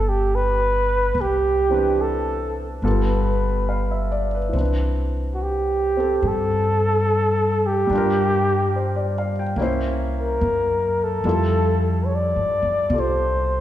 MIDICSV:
0, 0, Header, 1, 4, 480
1, 0, Start_track
1, 0, Key_signature, 0, "major"
1, 0, Tempo, 846262
1, 648, Time_signature, 4, 2, 24, 8
1, 3535, Tempo, 835655
1, 7770, End_track
2, 0, Start_track
2, 0, Title_t, "Flugelhorn"
2, 0, Program_c, 0, 56
2, 0, Note_on_c, 0, 69, 67
2, 49, Note_on_c, 0, 67, 70
2, 58, Note_off_c, 0, 69, 0
2, 200, Note_on_c, 0, 71, 85
2, 209, Note_off_c, 0, 67, 0
2, 685, Note_on_c, 0, 67, 77
2, 694, Note_off_c, 0, 71, 0
2, 1139, Note_on_c, 0, 69, 75
2, 1148, Note_off_c, 0, 67, 0
2, 1506, Note_off_c, 0, 69, 0
2, 1621, Note_on_c, 0, 71, 58
2, 2395, Note_off_c, 0, 71, 0
2, 3030, Note_on_c, 0, 66, 52
2, 3077, Note_on_c, 0, 67, 74
2, 3086, Note_off_c, 0, 66, 0
2, 3561, Note_on_c, 0, 69, 82
2, 3569, Note_off_c, 0, 67, 0
2, 4355, Note_on_c, 0, 67, 82
2, 4363, Note_off_c, 0, 69, 0
2, 5302, Note_off_c, 0, 67, 0
2, 5809, Note_on_c, 0, 70, 75
2, 6295, Note_on_c, 0, 69, 79
2, 6304, Note_off_c, 0, 70, 0
2, 6879, Note_on_c, 0, 73, 58
2, 6888, Note_off_c, 0, 69, 0
2, 6934, Note_on_c, 0, 74, 86
2, 6943, Note_off_c, 0, 73, 0
2, 7421, Note_on_c, 0, 72, 70
2, 7430, Note_off_c, 0, 74, 0
2, 7770, Note_off_c, 0, 72, 0
2, 7770, End_track
3, 0, Start_track
3, 0, Title_t, "Grand piano"
3, 0, Program_c, 1, 0
3, 0, Control_c, 1, 64, 127
3, 0, Note_on_c, 1, 52, 51
3, 0, Note_on_c, 1, 62, 46
3, 0, Note_on_c, 1, 71, 50
3, 633, Note_off_c, 1, 52, 0
3, 658, Note_off_c, 1, 62, 0
3, 666, Note_off_c, 1, 71, 0
3, 959, Note_on_c, 1, 52, 41
3, 967, Note_on_c, 1, 60, 39
3, 974, Note_on_c, 1, 62, 43
3, 986, Note_on_c, 1, 71, 50
3, 1600, Note_off_c, 1, 52, 0
3, 1604, Note_off_c, 1, 60, 0
3, 1608, Note_off_c, 1, 62, 0
3, 1608, Note_on_c, 1, 55, 49
3, 1609, Control_c, 1, 64, 0
3, 1614, Note_off_c, 1, 71, 0
3, 1614, Note_on_c, 1, 59, 43
3, 1614, Note_on_c, 1, 65, 41
3, 1615, Note_on_c, 1, 69, 55
3, 1698, Control_c, 1, 64, 127
3, 2092, Note_on_c, 1, 77, 39
3, 2219, Note_on_c, 1, 76, 37
3, 2314, Note_off_c, 1, 77, 0
3, 2333, Note_on_c, 1, 74, 38
3, 2420, Note_off_c, 1, 76, 0
3, 2464, Note_on_c, 1, 71, 41
3, 2483, Note_off_c, 1, 74, 0
3, 2547, Note_on_c, 1, 52, 42
3, 2571, Note_on_c, 1, 60, 39
3, 2575, Note_off_c, 1, 55, 0
3, 2578, Note_off_c, 1, 59, 0
3, 2578, Note_off_c, 1, 65, 0
3, 2578, Note_off_c, 1, 69, 0
3, 2580, Control_c, 1, 64, 0
3, 2593, Note_on_c, 1, 62, 36
3, 2604, Note_off_c, 1, 71, 0
3, 2613, Note_on_c, 1, 71, 46
3, 2673, Control_c, 1, 64, 127
3, 3377, Note_off_c, 1, 60, 0
3, 3386, Note_on_c, 1, 60, 38
3, 3401, Note_on_c, 1, 69, 40
3, 4475, Note_on_c, 1, 55, 50
3, 4482, Note_off_c, 1, 52, 0
3, 4486, Note_off_c, 1, 62, 0
3, 4494, Note_on_c, 1, 62, 47
3, 4501, Note_off_c, 1, 60, 0
3, 4502, Control_c, 1, 64, 0
3, 4508, Note_off_c, 1, 69, 0
3, 4514, Note_off_c, 1, 71, 0
3, 4517, Note_on_c, 1, 65, 46
3, 4537, Note_on_c, 1, 70, 55
3, 4597, Control_c, 1, 64, 127
3, 4988, Note_on_c, 1, 72, 40
3, 5101, Note_on_c, 1, 74, 42
3, 5202, Note_off_c, 1, 72, 0
3, 5230, Note_on_c, 1, 77, 38
3, 5300, Note_off_c, 1, 74, 0
3, 5350, Note_on_c, 1, 79, 50
3, 5371, Note_off_c, 1, 77, 0
3, 5443, Note_off_c, 1, 55, 0
3, 5453, Note_off_c, 1, 62, 0
3, 5454, Note_on_c, 1, 58, 50
3, 5460, Control_c, 1, 64, 0
3, 5463, Note_on_c, 1, 61, 44
3, 5464, Note_off_c, 1, 65, 0
3, 5473, Note_on_c, 1, 64, 46
3, 5474, Note_off_c, 1, 70, 0
3, 5481, Note_on_c, 1, 72, 60
3, 5509, Note_off_c, 1, 79, 0
3, 5576, Control_c, 1, 64, 127
3, 6411, Note_off_c, 1, 64, 0
3, 6413, Note_off_c, 1, 58, 0
3, 6417, Note_off_c, 1, 61, 0
3, 6417, Note_on_c, 1, 55, 47
3, 6419, Control_c, 1, 64, 0
3, 6419, Note_on_c, 1, 64, 44
3, 6426, Note_off_c, 1, 72, 0
3, 6426, Note_on_c, 1, 65, 45
3, 6430, Note_on_c, 1, 69, 55
3, 6507, Control_c, 1, 64, 127
3, 7366, Note_off_c, 1, 65, 0
3, 7374, Note_on_c, 1, 65, 39
3, 7382, Note_off_c, 1, 69, 0
3, 7386, Note_on_c, 1, 67, 32
3, 7390, Note_on_c, 1, 69, 43
3, 7770, Note_off_c, 1, 55, 0
3, 7770, Note_off_c, 1, 64, 0
3, 7770, Note_off_c, 1, 65, 0
3, 7770, Note_off_c, 1, 67, 0
3, 7770, Note_off_c, 1, 69, 0
3, 7770, End_track
4, 0, Start_track
4, 0, Title_t, "Upright bass"
4, 0, Program_c, 2, 32
4, 0, Note_on_c, 2, 31, 70
4, 621, Note_off_c, 2, 31, 0
4, 649, Note_on_c, 2, 36, 64
4, 1580, Note_off_c, 2, 36, 0
4, 1600, Note_on_c, 2, 31, 58
4, 2549, Note_off_c, 2, 31, 0
4, 2571, Note_on_c, 2, 36, 63
4, 3509, Note_off_c, 2, 36, 0
4, 3530, Note_on_c, 2, 43, 70
4, 4470, Note_off_c, 2, 43, 0
4, 4491, Note_on_c, 2, 43, 68
4, 5428, Note_off_c, 2, 43, 0
4, 5447, Note_on_c, 2, 36, 69
4, 5906, Note_off_c, 2, 36, 0
4, 5935, Note_on_c, 2, 42, 68
4, 6391, Note_off_c, 2, 42, 0
4, 6410, Note_on_c, 2, 41, 72
4, 7027, Note_off_c, 2, 41, 0
4, 7055, Note_on_c, 2, 43, 50
4, 7202, Note_off_c, 2, 43, 0
4, 7206, Note_on_c, 2, 42, 59
4, 7356, Note_off_c, 2, 42, 0
4, 7363, Note_on_c, 2, 36, 73
4, 7770, Note_off_c, 2, 36, 0
4, 7770, End_track
0, 0, End_of_file